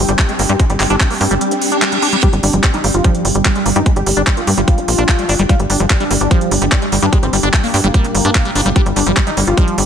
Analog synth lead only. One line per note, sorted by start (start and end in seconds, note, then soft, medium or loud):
2.23 2.29 G4 loud
2.33 2.39 G3 medium
2.43 2.50 D4 medium
2.53 2.60 G3 medium
2.64 2.70 G3 medium
2.74 2.80 D#4 medium
2.84 2.90 G3 medium
2.94 3.01 F4 medium
3.04 3.11 G3 medium
3.15 3.21 G3 medium
3.25 3.31 G3 medium
3.45 3.52 G3 medium
3.55 3.62 G3 medium
3.66 3.72 G3 medium
3.76 3.82 D#4 medium
3.86 3.92 G3 medium
3.96 4.03 G4 medium
4.06 4.13 G3 medium
4.17 4.23 G3 medium
4.27 4.33 G3 medium
4.37 4.43 F4 medium
4.47 4.54 G3 medium
4.57 5.41 F4 loud
5.49 5.56 F4 loud
5.60 5.66 G3 medium
5.70 5.76 D4 medium
5.80 5.86 G3 medium
5.90 5.97 G3 medium
6.00 6.07 D4 medium
6.11 6.17 G3 medium
6.21 6.27 D4 loud
6.31 6.37 G3 medium
6.41 6.48 G3 medium
6.51 6.58 G3 medium
6.72 6.78 G3 medium
6.82 6.88 G3 medium
6.92 6.99 G3 medium
7.02 7.09 D4 medium
7.13 7.19 G3 medium
7.23 7.29 C4 loud
7.33 7.39 G3 medium
7.43 7.50 G3 medium
7.53 7.60 G3 medium
7.64 7.70 A#3 medium
7.74 7.80 G3 medium
7.84 8.68 A#3 loud
8.76 8.82 G4 loud
8.86 8.92 G3 medium
8.96 9.03 D4 medium
9.06 9.13 G3 medium
9.17 9.23 G3 medium
9.27 9.33 D#4 medium
9.37 9.43 G3 medium
9.47 9.54 F4 loud
9.57 9.64 G3 medium
9.68 9.74 G3 medium
9.78 9.84 G3 medium